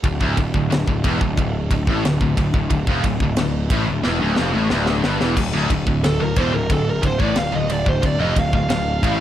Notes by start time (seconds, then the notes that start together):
0.03 D1 D2, kick, ride
0.20 D1 D2, kick
0.37 D1 D2, kick, ride
0.54 D1 D2, kick
0.70 D1 D2, snare, ride
0.87 D1 D2, kick
1.04 E1 E2, kick, ride
1.21 D1 D2, kick
1.37 D1 D2, kick, ride
1.71 D1 D2, kick, ride
1.87 A1 A2, kick
2.05 D1 D2, snare, ride
2.21 D1 D2, kick
2.37 D1 D2, kick, ride
2.54 D1 D2, kick
2.70 D1 D2, kick, ride
2.87 F1 F2, kick
3.04 D1 D2, kick, ride
3.20 D1 D2, kick
3.37 D1 D2, snare, ride
3.70 A1 A2, kick, ride
3.89 D1 D2
4.04 E1 E2, snare
4.22 D1 D2
4.36 F1 F2, snare
4.55 A1 A2
4.70 D1 D2, snare
4.86 snare
5.04 G1 G2, snare
5.20 E1 E2, snare
5.37 D1 D2, kick, crash
5.53 D1 D2
5.70 D1 D2, kick, ride
5.87 D1 D2, kick
6.04 D1 D2 A4, snare, ride
6.20 D1 D2 A#4
6.36 E1 E2 C5, kick, ride
6.53 D1 D2 A#4
6.70 D1 D2 A4, kick, ride
6.90 A#4
7.03 D1 D2 C5, kick, ride
7.19 A1 A2 D5, kick
7.36 D1 D2 F5, snare, ride
7.52 D1 D2 D#5
7.70 D1 D2 D5, ride
7.86 D1 D2 C5, kick
8.02 D1 D2 D5, kick, ride
8.18 F1 F2 D#5
8.35 D1 D2, kick, ride
8.40 F5
8.53 D1 D2 F5, kick
8.69 D1 D2, snare, ride
9.03 A1 A2, kick, ride